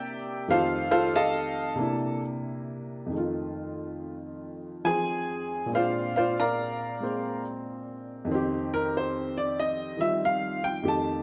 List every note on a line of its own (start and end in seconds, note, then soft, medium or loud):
0.00 0.48 C3 medium
0.00 0.48 A#3 soft
0.00 0.49 C4 soft
0.00 0.50 D4 soft
0.00 0.51 E4 medium
0.00 0.45 G4 medium
0.00 0.45 D5 medium
0.00 0.45 E5 medium
0.00 0.45 G5 loud
0.48 1.79 F2 medium
0.48 1.79 D#3 medium
0.48 1.79 A3 soft
0.48 0.90 F4 medium
0.48 1.80 G4 medium
0.48 0.90 A4 medium
0.48 0.90 C5 medium
0.48 0.90 F5 loud
0.91 1.13 F4 medium
0.91 1.13 A4 medium
0.91 1.13 C5 medium
0.91 1.13 F5 loud
1.16 2.21 A4 medium
1.16 1.76 D#5 medium
1.16 1.76 F5 medium
1.16 2.21 A5 loud
1.76 3.11 C3 medium
1.76 3.12 A#3 medium
1.76 3.13 D4 medium
1.81 3.13 E4 medium
3.06 5.69 F2 soft
3.06 5.71 D#3 soft
3.14 5.73 A3 soft
3.14 5.74 F4 medium
4.84 5.71 F3 soft
4.84 5.72 C4 soft
4.84 5.69 G#4 medium
4.84 5.73 C5 soft
4.84 5.68 G#5 medium
5.66 8.26 A#2 soft
5.66 6.99 G#3 soft
5.73 7.02 C4 soft
5.73 8.31 D4 medium
5.73 6.16 F4 medium
5.73 6.16 C5 medium
5.73 6.16 D5 medium
5.73 6.15 F5 medium
6.16 6.37 F4 medium
6.16 6.37 C5 medium
6.16 6.37 D5 medium
6.16 6.37 F5 medium
6.40 7.41 A#4 medium
6.40 7.41 D5 medium
6.40 7.41 F5 medium
6.40 7.41 A#5 medium
7.00 8.29 G#3 soft
7.00 8.30 A#3 soft
7.00 8.30 C4 medium
8.25 10.82 F2 medium
8.25 9.96 D#3 medium
8.31 10.86 C4 medium
8.31 10.84 G4 medium
8.74 8.93 A#4 medium
8.97 9.36 C5 medium
9.38 9.57 D5 medium
9.60 9.99 D#5 medium
9.97 10.82 D#3 soft
9.97 10.85 G3 soft
9.97 10.85 F4 soft
9.97 10.21 E5 medium
10.25 10.65 F5 medium
10.64 10.85 G5 medium
10.83 11.23 F2 medium
10.83 11.23 D#3 soft
10.83 11.23 A3 soft
10.83 11.23 G4 medium
10.88 11.23 A5 medium